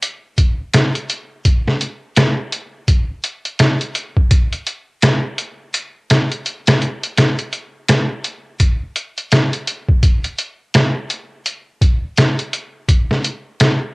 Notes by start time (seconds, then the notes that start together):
0.03 closed hi-hat
0.38 kick, closed hi-hat
0.74 snare, closed hi-hat
0.95 closed hi-hat
1.10 closed hi-hat
1.45 kick, closed hi-hat
1.68 snare
1.81 closed hi-hat
2.17 snare, closed hi-hat
2.52 closed hi-hat
2.88 kick, closed hi-hat
3.24 closed hi-hat
3.45 closed hi-hat
3.59 snare, closed hi-hat
3.81 closed hi-hat
3.95 closed hi-hat
4.17 kick
4.31 kick, closed hi-hat
4.53 closed hi-hat
4.67 closed hi-hat
5.02 snare, closed hi-hat
5.38 closed hi-hat
5.74 closed hi-hat
6.10 snare, closed hi-hat
6.32 closed hi-hat
6.46 closed hi-hat
6.67 snare, closed hi-hat
6.82 closed hi-hat
7.03 closed hi-hat
7.17 snare, closed hi-hat
7.39 closed hi-hat
7.53 closed hi-hat
7.88 snare, closed hi-hat
8.24 closed hi-hat
8.60 kick, closed hi-hat
8.96 closed hi-hat
9.18 closed hi-hat
9.32 snare, closed hi-hat
9.53 closed hi-hat
9.67 closed hi-hat
9.89 kick
10.03 kick, closed hi-hat
10.24 closed hi-hat
10.39 closed hi-hat
10.74 snare, closed hi-hat
11.10 closed hi-hat
11.46 closed hi-hat
11.81 kick, closed hi-hat
12.17 snare, closed hi-hat
12.39 closed hi-hat
12.53 closed hi-hat
12.89 kick, closed hi-hat
13.11 snare
13.24 closed hi-hat
13.60 snare, closed hi-hat